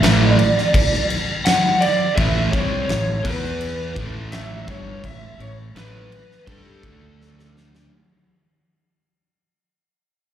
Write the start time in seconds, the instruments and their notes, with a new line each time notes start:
Already playing: lead electric guitar E5
0.02 fingered electric bass A1, distorted electric guitar A2 E3 A3, snare, crash
0.30 lead electric guitar D5
0.39 crash
0.58 snare
0.74 kick, crash
0.94 snare
1.10 crash
1.45 lead electric guitar F#5, snare, crash
1.81 lead electric guitar D5, crash
2.16 fingered electric bass A1, distorted electric guitar A2 E3 A3, lead electric guitar E5, kick, crash
2.51 fingered electric bass C2, distorted electric guitar C3 G3 C4, lead electric guitar C#5, kick, crash
2.89 fingered electric bass A1, distorted electric guitar A2 E3, snare, crash
3.23 fingered electric bass E2, distorted electric guitar E3 B3 E4, lead electric guitar B4, kick, crash
3.44 snare
3.61 crash
3.96 fingered electric bass A1, distorted electric guitar A2 E3 A3, kick, crash
4.32 lead electric guitar E5, snare, crash
4.68 fingered electric bass G1, distorted electric guitar G2 D3 G3, lead electric guitar C#5, kick, crash
5.04 fingered electric bass A1, distorted electric guitar A2 E3, lead electric guitar E5, kick, crash
5.39 fingered electric bass A1, distorted electric guitar A2 E3, lead electric guitar C#5, crash
5.75 fingered electric bass A1, distorted electric guitar A2 E3 A3, lead electric guitar B4, snare, crash
6.12 crash
6.31 snare
6.47 fingered electric bass G2, distorted electric guitar G3 D4 G4, lead electric guitar A4, kick, crash
6.83 fingered electric bass D2, distorted electric guitar D3 A3 D4, kick, crash
7.22 snare
7.39 snare
7.57 snare
7.75 snare